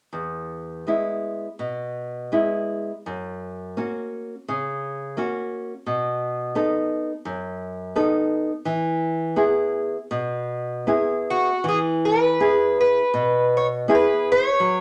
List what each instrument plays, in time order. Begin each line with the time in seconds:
0.12 nylon-string guitar E2
0.87 nylon-string guitar G#3 B3 E4
1.59 nylon-string guitar B2
2.32 nylon-string guitar G#3 B3 E4
3.06 nylon-string guitar F#2
3.77 nylon-string guitar A#3 C#4 F#4
4.48 nylon-string guitar C#3
5.17 nylon-string guitar A#3 C#4 F#4
5.86 nylon-string guitar B2
6.55 nylon-string guitar B3 D#4 A4
7.25 nylon-string guitar F#2
7.95 nylon-string guitar B3 D#4 A4
8.65 nylon-string guitar E3
9.36 nylon-string guitar B3 E4 G#4
10.11 nylon-string guitar B2
10.87 nylon-string guitar B3 E4 G#4
11.30 twelve-string acoustic guitar F#4
11.64 nylon-string guitar E3
11.69 twelve-string acoustic guitar G#4
12.05 twelve-string acoustic guitar B4
12.40 nylon-string guitar B3 E4 G#4
12.81 twelve-string acoustic guitar B4
13.14 nylon-string guitar B2
13.57 twelve-string acoustic guitar C#5
13.88 nylon-string guitar B3 E4 G#4
13.95 twelve-string acoustic guitar B4
14.32 twelve-string acoustic guitar C#5
14.60 nylon-string guitar F#3